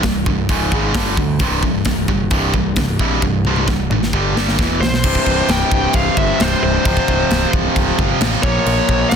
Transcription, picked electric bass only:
0.04 0.26 C1 medium
0.26 0.48 C1 loud
0.49 0.71 C#1 medium
0.72 0.94 G#1 medium
0.95 1.17 G1 medium
1.17 1.39 D2 medium
1.40 1.62 C1 medium
1.63 1.85 C1 medium
1.86 2.08 C1 medium
2.08 2.30 G1 medium
2.31 2.53 C1 medium
2.54 2.76 C1 medium
2.77 2.98 C1 medium
2.99 3.21 A#1 medium
3.22 3.44 C1 medium
3.45 3.67 C1 medium
3.68 3.90 C1 medium
3.91 4.13 G#1 medium
4.13 4.35 G1 medium
4.36 4.58 G1 medium
4.59 4.80 E1 medium
4.81 5.03 B1 medium
5.04 5.18 C1 loud
5.27 5.41 C1 medium
5.48 5.62 C1 loud
5.72 5.86 C1 medium
5.94 6.08 C1 medium
6.17 6.31 G1 loud
6.40 6.54 C1 loud
6.63 6.77 C1 medium
6.86 6.99 C1 loud
7.08 7.22 C1 medium
7.30 7.44 C1 medium
7.53 7.67 C1 loud
7.76 7.90 C1 medium
7.99 8.13 G1 medium
8.21 8.35 A1 loud
8.43 8.57 A#1 medium
8.66 8.80 A#1 medium
8.89 9.03 A#1 medium
9.12 9.16 A#1 medium

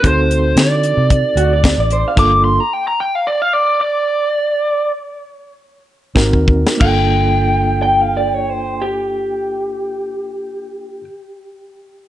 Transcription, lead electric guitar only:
0.07 0.55 C5 medium
0.60 3.26 D5 medium
2.19 2.44 D6 medium
2.44 2.60 C6 medium
2.60 2.73 A#5 medium
2.73 2.86 G5 medium
2.88 2.98 A#5 medium
3.00 3.15 G5 loud
3.15 3.26 F5 medium
3.27 3.42 D5 medium
3.42 3.53 F5 medium
3.53 3.79 D5 medium
3.81 4.91 D5 medium
6.81 11.04 G5 medium

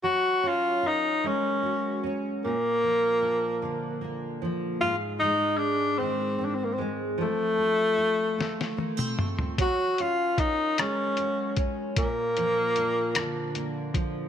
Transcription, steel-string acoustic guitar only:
0.03 2.43 F#3 medium
0.43 2.02 C#4 soft
0.83 4.33 A#4 soft
1.24 2.51 G#3 medium
1.63 2.51 F#4 soft
2.03 2.51 C#4 soft
2.44 4.80 A#2 medium
2.83 4.41 F3 soft
3.22 4.89 D4 medium
3.62 4.89 D3 medium
4.01 4.89 A#3 soft
4.42 4.89 F3 medium
4.81 7.19 G#2 medium
5.22 6.77 G#3 soft
6.00 7.17 D#3 medium
6.38 8.77 C4 soft
6.78 7.27 G#3 medium
7.18 9.58 F3 medium
7.58 8.37 A3 soft
7.97 9.66 F4 medium
8.38 9.16 A3 medium
8.77 8.97 A#3 soft
8.97 9.66 C4 soft
9.18 9.66 A3 soft
9.59 11.97 F#3 medium
10.00 11.56 C#4 soft
10.37 13.87 A#4 medium
10.78 12.05 G#3 medium
11.18 12.05 F#4 soft
11.57 12.05 C#4 medium
11.96 14.29 A#2 medium
12.37 13.93 F3 soft
12.77 14.29 D4 medium
13.17 14.29 D3 medium
13.56 14.29 A#3 soft
13.94 14.29 F3 medium

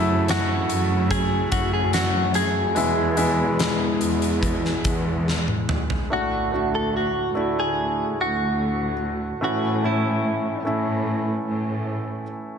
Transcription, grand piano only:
0.00 0.65 C#3 medium
0.00 2.79 F#3 medium
0.00 2.78 A3 medium
0.00 2.77 E4 medium
2.75 3.97 B2 medium
2.75 3.15 G#3 medium
2.75 3.15 B3 medium
2.75 3.16 E4 medium
3.16 4.76 G#3 medium
3.16 4.76 B3 medium
3.16 4.76 E4 medium
6.10 7.32 A2 soft
6.10 6.50 A3 medium
6.10 6.51 D4 soft
6.10 6.51 F#4 medium
6.52 7.31 A3 soft
6.52 7.32 D4 soft
6.52 7.32 F#4 medium
7.35 8.92 A3 medium
7.35 8.93 D4 soft
7.35 8.93 E4 medium
9.41 10.61 A2 medium
9.41 10.61 E3 soft
9.41 9.81 A3 medium
9.41 9.81 C#4 medium
9.41 9.82 E4 medium
9.83 10.61 A3 medium
9.83 10.62 C#4 soft
9.83 10.62 E4 medium
10.65 12.22 A3 medium
10.65 12.22 C#4 soft
10.65 12.23 E4 medium

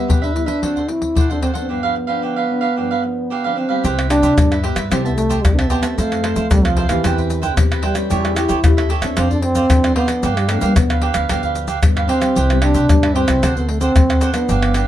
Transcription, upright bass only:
3.84 4.18 C2 medium
4.23 4.35 C3 medium
4.38 4.72 G2 medium
4.76 4.88 G2 medium
4.91 5.36 C2 medium
5.44 5.67 C2 medium
5.98 6.32 F2 loud
6.36 6.48 F3 medium
6.51 6.85 C2 medium
6.90 7.02 D#2 medium
7.05 7.50 E2 medium
7.57 7.80 E2 medium
8.11 8.45 E2 loud
8.50 8.61 E3 medium
8.65 8.98 E2 medium
9.02 9.14 E2 medium
9.18 9.63 F2 loud
9.71 9.93 F2 medium
10.24 10.58 G2 medium
10.62 10.74 G3 medium
10.77 11.11 D2 medium
11.15 11.27 D2 medium
11.30 11.75 D2 medium
11.84 12.06 G2 medium
12.37 12.71 C2 loud
12.75 12.87 C3 medium
12.90 13.24 G2 medium
13.28 13.40 C2 medium
13.43 13.88 D2 medium
13.96 14.19 D2 medium
14.50 14.83 G1 medium

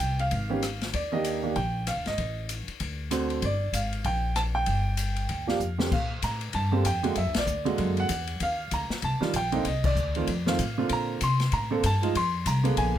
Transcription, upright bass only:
0.00 0.29 C2 medium
0.31 0.90 G#1 medium
0.94 1.53 D#2 medium
1.56 1.94 A#1 medium
1.97 2.07 D2 medium
2.07 2.17 G#1 medium
2.18 2.65 A1 medium
2.68 muted upright bass stroke soft
2.80 3.39 D2 medium
3.42 3.71 G1 medium
3.72 4.02 G#1 medium
4.05 4.64 A#1 medium
4.67 5.26 G1 medium
5.30 5.58 D2 medium
5.60 5.89 F2 medium
5.92 6.22 A#2 medium
6.23 6.53 A2 medium
6.54 6.84 G2 medium
6.85 7.15 F2 medium
7.16 7.26 F#2 medium
7.26 7.35 D2 medium
7.36 7.46 A#1 medium
7.46 7.77 D2 medium
7.78 8.08 F#2 medium
8.09 8.39 E2 medium
8.41 8.71 D#2 medium
8.72 8.89 D2 medium
8.90 muted upright bass stroke soft
9.03 9.20 C2 medium
9.20 muted upright bass stroke soft
9.34 9.64 A#1 medium
9.65 9.95 C2 medium
9.95 10.26 D2 medium
10.28 10.57 F2 medium
10.59 10.89 A2 medium
10.90 11.20 A#2 medium
11.21 11.51 C3 medium
11.52 11.82 A2 medium
11.84 12.13 G2 loud
12.15 12.44 F2 medium
12.46 12.76 C2 loud
12.77 12.98 A#1 medium

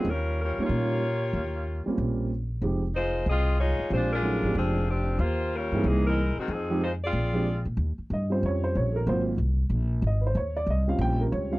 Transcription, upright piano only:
0.59 1.00 G3 soft
0.59 1.00 A#3 medium
0.59 1.01 C#4 soft
0.59 1.01 D#4 soft
0.59 1.01 F4 medium
1.86 2.28 G3 medium
1.86 2.29 A#3 medium
1.86 2.29 C4 medium
1.86 2.29 C#4 medium
1.86 2.29 F4 medium
2.61 2.81 F3 medium
2.61 2.81 G#3 medium
2.61 2.81 C4 soft
2.61 2.82 D#4 soft
2.61 2.82 G4 medium
3.90 4.10 F3 medium
3.90 4.10 G#3 soft
3.90 4.10 C4 soft
3.90 4.10 D4 medium
3.90 4.11 G4 medium
4.22 4.42 F#3 medium
4.22 4.42 A3 medium
4.22 4.42 C#4 medium
4.22 4.43 D#4 medium
4.22 4.42 G#4 medium
4.44 4.72 F3 medium
4.44 4.73 G#3 medium
4.44 4.73 C4 medium
4.44 4.73 D4 soft
4.44 4.73 G4 medium
5.74 6.15 E3 medium
5.74 6.15 A#3 medium
5.74 6.15 C4 medium
5.74 6.15 D#4 medium
5.74 6.16 G#4 medium
6.70 6.80 F3 medium
6.70 6.81 G#3 medium
6.70 6.81 C4 medium
6.70 6.81 D#4 medium
6.70 6.81 G4 medium
7.33 7.44 F3 medium
7.33 7.44 G#3 medium
7.33 7.45 C4 medium
7.33 7.45 D4 medium
7.33 7.45 G4 medium
8.13 8.32 D#5 medium
8.30 9.03 G3 soft
8.30 9.03 C4 soft
8.30 9.03 C#4 soft
8.30 9.03 F4 soft
8.30 8.43 C5 medium
8.46 8.64 C#5 medium
8.64 8.75 C5 medium
8.77 8.96 C#5 medium
8.92 8.94 A4 soft
8.92 9.07 A#4 medium
9.07 9.31 F#3 soft
9.07 9.31 A#3 soft
9.07 9.31 C4 soft
9.07 9.31 F4 medium
9.07 9.21 C5 medium
10.07 10.25 D#5 medium
10.21 10.23 B4 medium
10.27 10.37 C5 medium
10.37 10.56 C#5 medium
10.57 10.68 D5 medium
10.70 10.89 D#5 medium
10.88 11.50 G3 soft
10.88 11.50 C4 soft
10.88 11.51 C#4 soft
10.88 11.51 F4 medium
10.88 11.00 F5 medium
11.01 11.21 G5 medium
11.21 11.32 A#4 medium
11.32 11.52 C#5 medium
11.51 11.59 G3 soft
11.51 11.59 C4 soft
11.51 11.59 C#4 soft
11.51 11.59 F4 soft
11.51 11.59 F5 medium

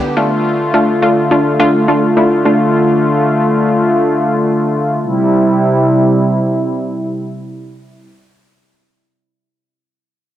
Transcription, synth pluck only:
0.00 0.11 B3 medium
0.00 0.11 D4 medium
0.00 0.11 G4 loud
0.17 0.62 A3 loud
0.17 0.62 D4 medium
0.17 0.62 F4 loud
0.74 0.96 A3 medium
0.74 0.97 D4 medium
0.74 0.97 F4 loud
1.02 1.25 A3 medium
1.02 1.25 D4 medium
1.02 1.25 F4 loud
1.31 1.54 A3 medium
1.31 1.54 D4 medium
1.31 1.54 F4 loud
1.60 1.82 A3 loud
1.60 1.82 D4 loud
1.60 1.82 F4 loud
1.88 2.11 A3 medium
1.88 2.11 D4 medium
1.88 2.11 F4 loud
2.17 2.39 A3 medium
2.17 2.39 D4 medium
2.17 2.39 E4 loud
2.45 2.68 A3 medium
2.45 2.68 D4 medium
2.45 2.68 F4 medium

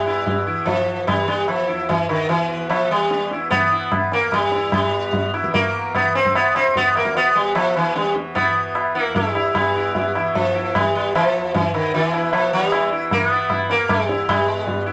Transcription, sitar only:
0.00 0.42 G3 medium
0.06 0.25 E4 soft
0.26 0.45 E4 soft
0.47 0.66 E4 soft
0.65 1.07 F3 medium
1.07 1.26 G3 medium
1.28 1.48 G3 medium
1.48 1.89 F3 medium
1.68 1.87 E4 soft
1.89 2.08 E3 medium
2.09 2.29 D#3 medium
2.29 2.69 E3 medium
2.69 2.91 F3 medium
2.91 3.29 G3 medium
3.33 3.50 E4 soft
3.50 4.13 B3 medium
3.72 3.91 E4 soft
4.13 4.34 A#3 medium
4.34 4.73 G3 medium
4.53 4.72 E4 soft
4.74 5.30 G3 medium
5.34 5.53 E4 soft
5.54 5.95 A#3 medium
5.95 6.15 B3 medium
6.15 6.35 C4 medium
6.35 6.55 B3 medium
6.56 6.76 C4 medium
6.77 6.96 B3 medium
6.97 7.16 A#3 medium
7.17 7.37 B3 medium
7.35 7.54 G3 medium
7.55 7.76 F3 medium
7.77 7.95 E3 medium
7.96 8.14 G3 medium
8.35 8.95 B3 medium
8.35 8.54 E4 soft
8.95 9.14 A#3 medium
8.95 9.14 E4 soft
9.15 9.54 G3 medium
9.15 9.34 E4 soft
9.35 9.54 E4 soft
9.55 10.11 G3 medium
9.76 9.94 E4 soft
9.96 10.14 E4 soft
10.16 10.34 E4 soft
10.35 10.75 F3 medium
10.55 10.73 E4 soft
10.76 10.94 G3 medium
10.95 11.15 G3 medium
11.15 11.54 F3 medium
11.54 11.73 E3 medium
11.74 11.94 D#3 medium
11.94 12.05 D#3 medium
12.05 12.33 E3 medium
12.14 12.32 E4 soft
12.33 12.51 F3 medium
12.53 12.89 G3 medium
12.74 12.91 E4 soft
12.92 13.10 E4 soft
13.12 13.27 A#3 medium
13.27 13.70 B3 medium
13.27 13.48 E4 soft
13.50 13.68 E4 soft
13.71 13.90 A#3 medium
13.89 14.28 G3 medium
14.09 14.27 E4 soft
14.29 14.83 G3 medium
14.86 14.93 E4 soft

